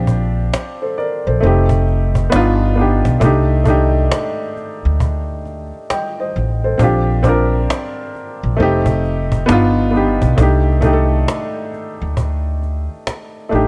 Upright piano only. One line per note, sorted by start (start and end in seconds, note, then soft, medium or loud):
0.00 1.42 C4 medium
0.00 1.44 D4 medium
0.00 1.43 F4 medium
0.00 1.43 G4 medium
0.82 0.97 A4 soft
0.82 0.97 C5 medium
0.98 1.25 A#4 medium
0.98 1.25 D5 medium
1.27 1.69 A4 soft
1.27 1.69 C5 medium
1.40 2.18 A3 medium
1.40 2.19 C4 medium
1.45 2.20 D#4 medium
1.45 2.21 G4 medium
2.30 2.69 B3 medium
2.30 2.70 D4 medium
2.30 2.71 D#4 medium
2.36 2.72 F4 loud
2.75 3.08 B3 medium
2.75 3.09 D4 medium
2.75 3.10 D#4 medium
2.81 3.11 G4 medium
3.20 3.53 A3 medium
3.20 3.54 D4 medium
3.20 3.55 D#4 medium
3.26 3.55 G4 medium
3.64 4.80 A3 medium
3.64 4.81 D4 medium
3.64 4.82 D#4 medium
3.70 4.83 G4 medium
5.91 6.18 D#5 medium
5.91 6.17 G5 medium
6.20 6.62 C5 soft
6.20 6.61 D#5 medium
6.64 7.06 A4 medium
6.64 7.06 C5 medium
6.78 7.11 C4 medium
6.78 7.12 D4 medium
6.78 7.13 F4 medium
6.83 7.14 G4 medium
7.23 8.39 C4 medium
7.23 8.40 D4 medium
7.27 8.41 F4 medium
7.27 8.42 A#4 medium
8.57 9.34 A3 medium
8.57 9.35 C4 medium
8.57 9.36 D#4 medium
8.63 9.37 G4 medium
9.46 9.85 B3 medium
9.46 9.86 D4 medium
9.50 9.87 D#4 medium
9.50 9.88 F4 loud
9.91 10.24 B3 medium
9.91 10.25 D4 medium
9.91 10.26 D#4 medium
9.97 10.27 G4 medium
10.36 10.69 A3 medium
10.36 10.70 D4 medium
10.36 10.71 D#4 medium
10.42 10.72 G4 medium
10.81 11.97 A3 medium
10.81 11.98 D4 medium
10.81 11.99 D#4 medium
10.86 10.93 G4 medium
10.93 12.03 A4 medium
13.49 13.68 A3 medium
13.49 13.68 D4 medium
13.49 13.68 D#4 medium
13.55 13.68 G4 medium